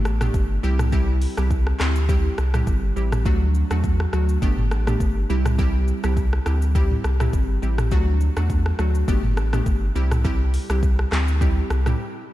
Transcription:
Already playing: synth pluck A3 B3 D4 G4
0.05 sub bass A1, cross-stick, shaker
0.21 synth pluck A3 B3 D4 G4, cross-stick, mid tom, shaker
0.34 sub bass G1, kick, shaker
0.63 sub bass C2, synth pluck G3 C4 E4 G4, shaker
0.79 cross-stick, mid tom, shaker
0.92 synth pluck G3 C4 E4 G4, kick, shaker
1.22 open hi-hat, shaker
1.37 sub bass C2, synth pluck G3 C4 E4 G4, cross-stick, shaker
1.51 kick, shaker
1.67 cross-stick
1.79 sub bass D2, synth pluck G3 C4 E4 G4, cross-stick, clap, shaker
1.96 shaker
2.09 synth pluck G3 C4 E4 G4, kick, shaker
2.38 sub bass C2, cross-stick, shaker
2.54 synth pluck G3 C4 E4 G4, cross-stick, mid tom, shaker
2.67 sub bass G1, kick, shaker
2.96 sub bass A1, synth pluck G3 C4 E4 G4, shaker
3.12 cross-stick, mid tom, shaker
3.25 sub bass D2, synth pluck F#3 A3 D4 F#4, kick, shaker
3.55 shaker
3.71 sub bass E2, synth pluck F#3 A3 D4 F#4, cross-stick, shaker
3.84 kick, shaker
4.00 cross-stick
4.13 sub bass D2, synth pluck F#3 A3 D4 F#4, cross-stick, shaker
4.29 shaker
4.42 sub bass G1, synth pluck A3 B3 D4 G4, kick, shaker
4.58 mid tom
4.71 sub bass A1, cross-stick, shaker
4.87 synth pluck A3 B3 D4 G4, cross-stick, mid tom, shaker
5.00 sub bass G1, kick, shaker
5.29 sub bass C2, synth pluck G3 C4 E4 G4, shaker
5.46 cross-stick, mid tom, shaker
5.58 synth pluck G3 C4 E4 G4, kick, shaker
5.88 shaker
6.04 sub bass C2, synth pluck G3 C4 E4 G4, cross-stick, shaker
6.17 kick, shaker
6.33 cross-stick
6.46 sub bass D2, synth pluck G3 C4 E4 G4, cross-stick, shaker
6.62 shaker
6.75 synth pluck G3 C4 E4 G4, kick, shaker
6.91 mid tom
7.04 sub bass C2, cross-stick, shaker
7.20 synth pluck G3 C4 E4 G4, cross-stick, mid tom, shaker
7.33 sub bass G1, kick, shaker
7.62 sub bass A1, synth pluck G3 C4 E4 G4, shaker
7.78 cross-stick, mid tom, shaker
7.91 sub bass D2, synth pluck F#3 A3 D4 F#4, kick, shaker
8.21 shaker
8.37 sub bass E2, synth pluck F#3 A3 D4 F#4, cross-stick, shaker
8.50 kick, shaker
8.66 cross-stick
8.79 sub bass D2, synth pluck F#3 A3 D4 F#4, cross-stick, shaker
8.95 shaker
9.08 sub bass G1, synth pluck A3 B3 D4 G4, kick, shaker
9.24 mid tom
9.37 sub bass A1, cross-stick, shaker
9.53 synth pluck A3 B3 D4 G4, cross-stick, mid tom, shaker
9.66 sub bass G1, kick, shaker
9.95 sub bass C2, synth pluck G3 C4 E4 G4, shaker
10.11 cross-stick, mid tom, shaker
10.24 synth pluck G3 C4 E4 G4, kick, shaker
10.54 open hi-hat, shaker
10.70 sub bass C2, synth pluck G3 C4 E4 G4, cross-stick, shaker
10.83 kick, shaker
10.99 cross-stick
11.12 sub bass D2, synth pluck G3 C4 E4 G4, cross-stick, clap, shaker
11.28 shaker
11.41 synth pluck G3 C4 E4 G4, kick, shaker
11.70 sub bass C2, cross-stick, shaker
11.86 synth pluck G3 C4 E4 G4, cross-stick, mid tom, shaker

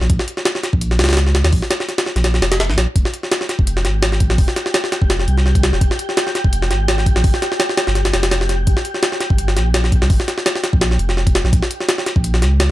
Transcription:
0.01 sub bass A#1, snare
0.10 sub bass A#1, kick, closed hi-hat
0.19 snare
0.28 closed hi-hat
0.37 snare
0.45 snare, closed hi-hat
0.55 snare
0.63 snare, closed hi-hat
0.73 sub bass A#1, kick
0.81 closed hi-hat
0.91 snare
0.99 sub bass C#2, snare, closed hi-hat
1.04 snare, closed hi-hat
1.09 snare, closed hi-hat
1.13 snare, closed hi-hat
1.17 snare, closed hi-hat
1.27 snare
1.35 snare, closed hi-hat
1.44 sub bass D#2, snare, closed hi-hat
1.53 sub bass A#1, kick, open hi-hat
1.62 snare
1.71 snare, closed hi-hat
1.80 snare
1.89 snare, closed hi-hat
1.98 snare, closed hi-hat
2.06 snare
2.16 sub bass A#1, snare, closed hi-hat
2.24 snare, closed hi-hat
2.34 snare
2.42 sub bass F1, snare, closed hi-hat
2.52 snare, closed hi-hat
2.60 sub bass F1, snare, closed hi-hat
2.70 sub bass A#1, snare
2.78 sub bass A#1, snare, closed hi-hat
2.96 sub bass F1, synth texture G4 G5, kick, closed hi-hat
3.05 snare
3.14 closed hi-hat
3.23 snare
3.32 snare, closed hi-hat
3.41 snare
3.49 snare, closed hi-hat
3.59 sub bass F1, kick
3.67 closed hi-hat
3.77 snare
3.85 sub bass G#1, snare, closed hi-hat
4.03 snare, closed hi-hat
4.12 snare
4.20 kick, closed hi-hat
4.30 sub bass A#1, snare
4.38 sub bass F1, kick, open hi-hat
4.48 snare
4.56 snare, closed hi-hat
4.66 snare
4.74 snare, closed hi-hat
4.84 snare
4.92 snare, closed hi-hat
5.02 sub bass F1, kick
5.10 snare, closed hi-hat
5.20 snare
5.28 sub bass C2, closed hi-hat
5.38 snare
5.46 snare
5.55 kick, closed hi-hat
5.63 snare, closed hi-hat
5.73 sub bass F1, snare
5.81 sub bass F1, kick, closed hi-hat
5.91 snare
5.99 closed hi-hat
6.09 snare
6.17 snare, closed hi-hat
6.27 snare
6.35 snare, closed hi-hat
6.44 sub bass F1, kick
6.53 closed hi-hat
6.62 snare
6.71 sub bass G#1, snare, closed hi-hat
6.88 snare, closed hi-hat
6.98 snare
7.06 kick, closed hi-hat
7.16 sub bass A#1, snare
7.24 sub bass G1, kick, open hi-hat
7.34 snare
7.42 snare, closed hi-hat
7.52 snare
7.60 snare, closed hi-hat
7.69 snare
7.77 snare, closed hi-hat
7.87 sub bass G1, snare
7.95 snare, closed hi-hat
8.05 snare, closed hi-hat
8.13 sub bass F1, snare, closed hi-hat
8.23 snare, closed hi-hat
8.31 snare, closed hi-hat
8.41 snare
8.49 snare, closed hi-hat
8.67 sub bass G1, kick, closed hi-hat
8.77 snare
8.85 closed hi-hat
8.94 snare
9.03 snare, closed hi-hat
9.12 snare
9.21 snare, closed hi-hat
9.30 sub bass G1, kick
9.38 closed hi-hat
9.48 snare
9.57 sub bass A#1, snare, closed hi-hat
9.74 snare, closed hi-hat
9.84 snare
9.92 kick, closed hi-hat
10.02 sub bass C2, snare
10.10 sub bass G1, kick, open hi-hat
10.20 snare
10.28 snare, closed hi-hat
10.38 snare
10.46 snare, closed hi-hat
10.56 snare
10.64 snare, closed hi-hat
10.73 sub bass A#1, kick
10.81 snare, closed hi-hat
10.91 snare
10.99 sub bass F1, closed hi-hat
11.09 snare
11.17 snare
11.27 kick, closed hi-hat
11.35 snare, closed hi-hat
11.44 sub bass A#1, snare
11.53 sub bass A#1, kick, closed hi-hat
11.63 snare
11.71 closed hi-hat
11.80 snare
11.89 snare, closed hi-hat
11.98 snare
12.06 snare, closed hi-hat
12.16 sub bass A#1, kick
12.24 closed hi-hat
12.34 snare
12.42 sub bass C#2, snare, closed hi-hat
12.60 snare, closed hi-hat

